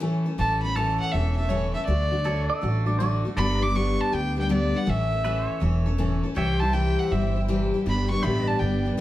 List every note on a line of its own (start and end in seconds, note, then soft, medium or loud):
0.00 0.25 A2 loud
0.00 0.26 E3 loud
0.00 0.26 A3 medium
0.00 0.25 C#4 loud
0.00 0.24 A4 loud
0.26 0.37 A3 soft
0.26 0.38 C#4 medium
0.26 0.38 A4 medium
0.38 0.97 A1 loud
0.38 0.63 A2 medium
0.38 0.63 E3 medium
0.38 0.63 A3 medium
0.38 0.63 C#4 medium
0.38 0.62 A4 medium
0.38 0.62 A5 loud
0.62 0.76 A3 soft
0.62 0.76 C#4 soft
0.62 0.76 A4 medium
0.62 0.77 B5 loud
0.75 1.14 A2 medium
0.75 1.12 E3 medium
0.75 1.13 A3 medium
0.75 1.13 C#4 medium
0.75 1.87 A4 medium
0.75 1.15 A4 medium
0.75 1.88 C#5 medium
0.75 1.00 A5 loud
1.00 1.13 F#5 loud
1.12 1.72 E1 medium
1.12 1.38 E3 medium
1.12 1.38 A3 medium
1.12 1.37 C#4 medium
1.12 1.36 A4 medium
1.12 1.36 E5 loud
1.36 1.49 A3 soft
1.36 1.49 C#4 soft
1.36 1.49 A4 medium
1.36 1.50 E5 loud
1.49 1.75 A2 medium
1.49 1.75 E3 medium
1.49 1.75 A3 loud
1.49 1.74 C#4 medium
1.49 1.73 A4 medium
1.49 1.73 C#5 loud
1.74 1.86 A3 soft
1.74 1.88 C#4 medium
1.74 1.88 A4 medium
1.74 1.85 E5 medium
1.86 2.46 D2 medium
1.86 2.12 D3 medium
1.86 2.12 A3 medium
1.86 2.11 D4 medium
1.86 2.10 F#4 medium
1.86 2.58 D5 loud
2.12 2.23 A3 soft
2.12 2.24 D4 medium
2.12 2.24 F#4 medium
2.24 2.60 D3 medium
2.24 2.61 A3 medium
2.24 2.62 D4 medium
2.24 2.62 F#4 medium
2.24 3.36 A4 medium
2.24 2.47 C#5 medium
2.47 3.36 D5 medium
2.47 2.86 E5 loud
2.61 3.22 A1 medium
2.61 2.87 D3 medium
2.61 2.86 A3 medium
2.61 2.86 D4 medium
2.61 2.85 F#4 medium
2.86 2.99 A3 medium
2.86 2.99 D4 medium
2.86 3.00 F#4 medium
2.86 2.98 D5 medium
2.99 3.25 D3 medium
2.99 3.25 A3 loud
2.99 3.25 D4 loud
2.99 3.24 F#4 loud
2.99 3.23 D5 loud
3.25 3.38 A3 medium
3.25 3.38 D4 medium
3.25 3.38 F#4 medium
3.37 3.96 G1 medium
3.37 3.62 G2 medium
3.37 3.63 D3 medium
3.37 3.62 G3 medium
3.37 3.61 B3 medium
3.37 3.61 D4 medium
3.37 3.60 G4 medium
3.37 3.62 A4 medium
3.37 4.86 D5 medium
3.37 3.64 B5 loud
3.61 3.74 G3 soft
3.61 3.75 B3 soft
3.61 3.75 D4 medium
3.61 3.75 G4 medium
3.61 4.85 B4 medium
3.61 3.78 D6 loud
3.75 4.13 G2 medium
3.75 4.12 D3 medium
3.75 4.11 G3 medium
3.75 4.12 B3 medium
3.75 4.12 D4 medium
3.75 4.13 G4 medium
3.75 4.02 C#6 loud
4.01 4.16 A5 loud
4.12 4.71 D2 medium
4.12 4.36 G3 medium
4.12 4.36 B3 medium
4.12 4.35 D4 medium
4.12 4.35 G4 medium
4.12 4.38 G5 loud
4.36 4.48 G3 soft
4.36 4.49 B3 medium
4.36 4.49 D4 medium
4.36 4.49 G4 medium
4.36 4.50 G5 medium
4.49 4.74 G2 medium
4.49 4.74 D3 medium
4.49 4.74 G3 medium
4.49 4.73 B3 loud
4.49 4.73 D4 medium
4.49 4.72 G4 loud
4.49 4.78 D5 medium
4.73 4.86 G3 soft
4.73 4.86 B3 soft
4.73 4.87 D4 medium
4.73 4.86 G4 medium
4.73 4.91 F#5 loud
4.86 5.46 A1 medium
4.86 5.11 A2 medium
4.86 5.11 E3 medium
4.86 5.12 A3 medium
4.86 5.11 C#4 medium
4.86 5.10 A4 medium
4.86 5.63 E5 loud
5.11 5.24 A3 medium
5.11 5.24 C#4 soft
5.11 5.24 A4 medium
5.24 5.62 A2 medium
5.24 5.60 E3 medium
5.24 5.60 A3 medium
5.24 5.60 C#4 medium
5.24 5.61 A4 medium
5.24 5.50 B4 medium
5.24 6.36 E5 medium
5.50 6.36 C#5 medium
5.60 6.20 E1 medium
5.60 5.86 E3 medium
5.60 5.86 A3 medium
5.60 5.86 C#4 medium
5.60 5.84 A4 medium
5.86 5.97 A3 soft
5.86 5.98 C#4 medium
5.86 5.98 A4 medium
5.98 6.23 A2 medium
5.98 6.23 E3 medium
5.98 6.23 A3 loud
5.98 6.23 C#4 loud
5.98 6.22 A4 loud
6.23 6.36 A3 soft
6.23 6.36 C#4 medium
6.23 6.36 A4 medium
6.35 6.95 C2 medium
6.35 6.60 C3 medium
6.35 6.61 E3 medium
6.35 6.61 G3 medium
6.35 7.84 C4 medium
6.35 6.61 E4 medium
6.35 6.60 G4 medium
6.35 7.84 C5 medium
6.35 6.57 C#5 medium
6.35 7.84 E5 medium
6.35 7.85 E5 medium
6.35 6.61 G5 loud
6.35 7.84 G5 medium
6.57 7.85 C5 medium
6.57 6.75 A5 loud
6.61 6.73 G3 medium
6.61 6.73 E4 medium
6.61 6.73 G4 medium
6.73 7.11 C3 medium
6.73 7.09 E3 medium
6.73 7.11 G3 medium
6.73 7.11 E4 medium
6.73 7.13 G4 medium
6.73 7.00 G5 loud
6.99 7.13 F#5 medium
7.11 7.70 G1 medium
7.11 7.35 E3 medium
7.11 7.36 G3 medium
7.11 7.35 E4 medium
7.11 7.34 G4 medium
7.11 7.36 E5 medium
7.35 7.48 G3 soft
7.35 7.48 E4 soft
7.35 7.48 G4 medium
7.48 7.73 C3 medium
7.48 7.73 E3 medium
7.48 7.73 G3 loud
7.48 7.74 E4 loud
7.48 7.73 G4 loud
7.74 7.85 G3 medium
7.74 7.87 E4 medium
7.74 7.86 G4 medium
7.85 8.15 G1 medium
7.85 8.10 G2 medium
7.85 8.10 D3 medium
7.85 9.01 G3 medium
7.85 8.10 G3 medium
7.85 8.10 B3 medium
7.85 8.10 D4 medium
7.85 9.01 G4 medium
7.85 8.09 G4 medium
7.85 9.01 B4 medium
7.85 9.01 D5 medium
7.85 8.10 B5 loud
8.10 8.22 G3 soft
8.10 8.22 B3 medium
8.10 8.23 D4 medium
8.10 8.23 G4 medium
8.10 8.25 C#6 loud
8.23 8.56 A1 medium
8.23 8.61 G2 medium
8.23 8.61 D3 medium
8.23 8.59 G3 medium
8.23 8.61 B3 medium
8.23 8.61 D4 medium
8.23 8.61 G4 medium
8.23 8.43 C5 medium
8.23 8.49 E5 medium
8.23 8.49 B5 loud
8.43 9.01 B4 medium
8.48 9.01 D5 medium
8.48 8.61 A5 medium
8.59 8.92 G1 medium
8.59 8.85 G3 medium
8.59 8.85 B3 medium
8.59 8.85 D4 medium
8.59 8.84 G4 medium
8.59 8.85 G5 medium
8.85 8.97 G3 medium
8.85 8.97 B3 medium
8.85 8.98 D4 medium
8.85 8.98 G4 medium
8.97 9.01 G2 loud